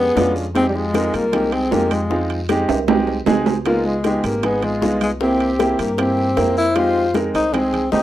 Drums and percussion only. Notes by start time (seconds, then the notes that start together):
0.17 high bongo, low bongo, high conga, high timbale, low timbale, short guiro
0.36 high bongo, short guiro
0.55 high bongo, high conga, high timbale, long guiro
0.75 high bongo, high conga
0.94 high bongo, high conga, high timbale, short guiro
1.14 high bongo, high conga, high timbale, short guiro
1.33 high bongo, high conga, low conga, high timbale, long guiro
1.52 high conga, high timbale
1.72 high bongo, low bongo, high conga, low timbale, short guiro
1.91 high bongo, high conga, high timbale, short guiro
2.11 high bongo, high conga, long guiro
2.30 high conga, high timbale
2.49 high bongo, high conga, high timbale, short guiro
2.69 high bongo, high conga, high timbale, short guiro
2.88 high bongo, high conga, low timbale, long guiro
3.07 high bongo, high conga, low timbale
3.26 high bongo, low bongo, high conga, low timbale, short guiro
3.46 high bongo, high conga, low timbale, short guiro
3.66 high bongo, high conga, high timbale, long guiro
3.85 high bongo, high conga
4.04 high bongo, high conga, high timbale, short guiro
4.24 high bongo, high timbale, short guiro
4.43 high bongo, high conga, low conga, high timbale, long guiro
4.62 high conga, low conga, high timbale
4.82 high bongo, low bongo, short guiro
5.01 high bongo, high conga, high timbale, short guiro
5.21 high bongo, high conga, long guiro
5.40 high conga, high timbale
5.59 high bongo, high conga, high timbale, short guiro
5.79 high bongo, high conga, high timbale, short guiro
5.98 high bongo, high conga, high timbale, long guiro
6.17 high bongo, high conga
6.37 high bongo, low bongo, high conga, high timbale, short guiro
6.57 high bongo, short guiro
6.76 high bongo, high conga, high timbale, long guiro
6.95 high bongo, high conga
7.14 high bongo, high conga, high timbale, short guiro
7.34 high bongo, high conga, high timbale, short guiro
7.54 high bongo, high conga, low conga, high timbale, long guiro
7.73 high conga, low conga, high timbale
7.92 high bongo, low bongo, high conga, low timbale, short guiro